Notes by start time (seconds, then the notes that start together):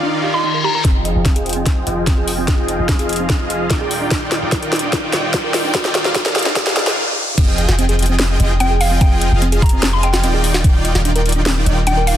Already playing: D#3 D#4 F4 D5 F5 G5
0.03 D4, reverse cymbal
0.23 G4
0.34 D#5 C6
0.44 D#4
0.54 A#4
0.64 G4 A#5
0.75 A#4 A#5
0.85 F1 F3 C4 D#4 F4 G#4 D#5 G5, kick, snare, closed hi-hat, riser
1.05 D#5, closed hi-hat
1.15 F1 F3 F4 G#4 D#5 G5
1.25 C4, kick, snare, closed hi-hat
1.36 G#4, closed hi-hat
1.46 closed hi-hat
1.49 closed hi-hat
1.53 C4, closed hi-hat
1.66 C4, kick, snare, closed hi-hat
1.87 F1 F3 F4 G#4 D#5 G5, closed hi-hat
2.07 C4, kick, snare, closed hi-hat
2.18 G#4
2.28 open hi-hat
2.38 C4
2.48 F1 F3 F4 G#4 D#5 G5, kick, snare, closed hi-hat
2.68 D#5, closed hi-hat
2.79 F1 F3 F4 G#4 D#5 F5
2.89 C4, kick, snare, closed hi-hat
2.99 G#4, closed hi-hat
3.09 closed hi-hat
3.13 closed hi-hat
3.16 C4, closed hi-hat
3.30 kick, snare, closed hi-hat
3.50 D#5, closed hi-hat
3.70 D#1 D#3 C4 D#4 F4 D5 G5, kick, snare, closed hi-hat
3.81 G#4
3.91 G4 D5, open hi-hat
4.01 D4
4.11 D#1 D#3 D#4 F4 D5 G5, kick, snare, closed hi-hat
4.32 D#5, snare, closed hi-hat
4.42 D#1 D#3 D#4 F4 D5 G5
4.52 D4, kick, snare, closed hi-hat
4.62 A#4, closed hi-hat
4.73 snare, closed hi-hat
4.76 closed hi-hat
4.79 D4, closed hi-hat
4.93 D4, kick, snare, closed hi-hat
5.13 D#1 D#3 D#4 F4 D5 D#5 G5, snare, closed hi-hat
5.34 D4, kick, snare, closed hi-hat
5.44 A#4
5.54 snare, open hi-hat
5.64 D4
5.74 D#1 D#3 D#4 F4 D5 G5, kick, snare, closed hi-hat
5.85 snare
5.95 D#5, snare, closed hi-hat
6.05 D#1 D#3 D#4 F4 D5 F5, snare
6.15 D4, kick, snare, closed hi-hat
6.26 A#4, snare, closed hi-hat
6.36 snare, closed hi-hat
6.39 closed hi-hat
6.43 D4, snare, closed hi-hat
6.56 kick, snare, closed hi-hat
6.67 snare
6.76 G4, snare, closed hi-hat
6.87 D#5, snare
7.38 F1 F3 C4 F4 G#4 D#5 G5, kick, closed hi-hat, crash, sub drop
7.58 D#5, closed hi-hat
7.69 F1 F3 F4 G#4 D#5 G5, snare
7.79 C4, closed hi-hat
7.89 G#4, closed hi-hat
7.99 closed hi-hat
8.03 closed hi-hat
8.06 C4, closed hi-hat
8.19 C4, snare, closed hi-hat
8.40 F1 F3 F4 G#4 D#5 G5, closed hi-hat
8.60 C4 G5, closed hi-hat
8.71 G#4
8.81 F5, open hi-hat
8.91 C4
9.01 F1 F3 C4 F4 G#4 D#5 G5, kick, closed hi-hat
9.21 D#5, closed hi-hat
9.32 F1 F3 F4 G#4 D#5 F5
9.42 C4, closed hi-hat
9.52 G#4, closed hi-hat
9.62 A#5, kick, closed hi-hat
9.66 closed hi-hat
9.69 C4, closed hi-hat
9.83 C4, snare, closed hi-hat
9.93 C6
10.03 D#5 G5, closed hi-hat
10.14 snare
10.23 D#1 D#3 C4 D#4 F4 D5 G5, closed hi-hat
10.34 G#4
10.44 open hi-hat
10.54 D4, snare
10.64 D#1 D#3 D4 D#4 F4 D5 G5, kick, closed hi-hat
10.85 D#5, closed hi-hat
10.95 D#1 D#3 D#4 F4 D5 G5, snare
11.05 D4, closed hi-hat
11.16 A#4, closed hi-hat
11.26 closed hi-hat
11.29 closed hi-hat
11.32 D4, closed hi-hat
11.46 D4, snare, closed hi-hat
11.66 D#1 D#3 D#4 F4 D5 D#5 G5, closed hi-hat
11.87 D4 G5, closed hi-hat
11.97 A#4
12.07 F5, open hi-hat